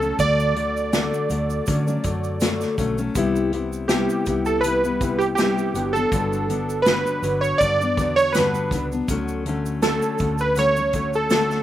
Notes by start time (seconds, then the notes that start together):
Already playing: C#2 A4
0.02 F#3 A3 C#4, shaker
0.19 D2 D3 F#3 A3 D5, kick, closed hi-hat, shaker
0.40 shaker
0.55 D3 F#3 A3, closed hi-hat
0.77 shaker
0.93 D3 F#3 A3, snare, closed hi-hat, shaker
1.14 shaker
1.30 D2 D3 F#3 A3, closed hi-hat, shaker
1.50 shaker
1.66 D3 F#3 A3 C#4, kick, closed hi-hat, shaker
1.87 F#3 A3 C#4, shaker
2.03 F#2 D3 F#3 A3, kick, closed hi-hat, shaker
2.24 shaker
2.40 D3 F#3 A3, snare, closed hi-hat, shaker
2.61 snare, shaker
2.78 B1 D3 F#3 A3 C#4, kick, closed hi-hat, shaker
2.98 F#3 A3 C#4, shaker
3.15 C2 C3 G3 B3 E4, kick, closed hi-hat, shaker
3.36 shaker
3.52 C3 G3 B3 E4, closed hi-hat
3.73 shaker
3.88 C3 G3 B3 E4 G4, snare, closed hi-hat, shaker
4.09 shaker
4.26 C2 C3 G3 B3 E4, kick, closed hi-hat, shaker
4.45 A4, shaker
4.61 C3 B4, closed hi-hat, shaker
4.65 G3 B3 E4
4.84 G3 B3 E4, shaker
5.01 C3 G3 B3 E4, kick, closed hi-hat, shaker
5.18 G4, closed hi-hat, shaker
5.35 C3 G3 B3 G4, snare, closed hi-hat, shaker
5.39 E4
5.58 shaker
5.74 G1 D3 F#3 B3 D4, closed hi-hat, shaker
5.93 B3 D4 A4, shaker
5.98 F#3
6.12 G1 G2 D3 F#3 B3 D4, kick, closed hi-hat, shaker
6.33 shaker
6.49 D3 F#3 B3 D4, closed hi-hat, shaker
6.69 shaker
6.82 G2 B4, snare, closed hi-hat, shaker
6.87 D3 F#3 B3 D4
7.06 shaker
7.22 G1 D3 F#3 B3 D4, closed hi-hat, shaker
7.41 C#5, shaker
7.58 G2 D3 F#3 B3 D5, kick, closed hi-hat, shaker
7.63 D4
7.81 F#3 B3 D4, shaker
7.97 E2 D3 F#3 B3 D4, kick, closed hi-hat, shaker
8.16 C#5, closed hi-hat, shaker
8.32 G2 D3 F#3 B4, snare, closed hi-hat, shaker
8.37 B3 D4
8.55 shaker
8.71 C#2 D3 F#3 B3, kick, closed hi-hat, shaker
8.75 D4
8.92 F#3 B3 D4, shaker
9.08 D2 D3 F#3 A3 C#4, kick, closed hi-hat, shaker
9.28 shaker
9.46 D3 F#3 A3 C#4, closed hi-hat
9.66 shaker
9.82 D3 F#3 A3 C#4 A4, snare, closed hi-hat, shaker
10.02 shaker
10.18 D2 D3 F#3 A3 C#4, kick, closed hi-hat, shaker
10.38 B4, shaker
10.56 D3 F#3 A3 C#4 C#5, closed hi-hat, shaker
10.76 F#3 A3 C#4, shaker
10.93 D3 F#3 A3 C#4, kick, closed hi-hat, shaker
11.13 A4, shaker
11.30 D3 F#3 A3 C#4 A4, snare, closed hi-hat, shaker
11.51 snare, shaker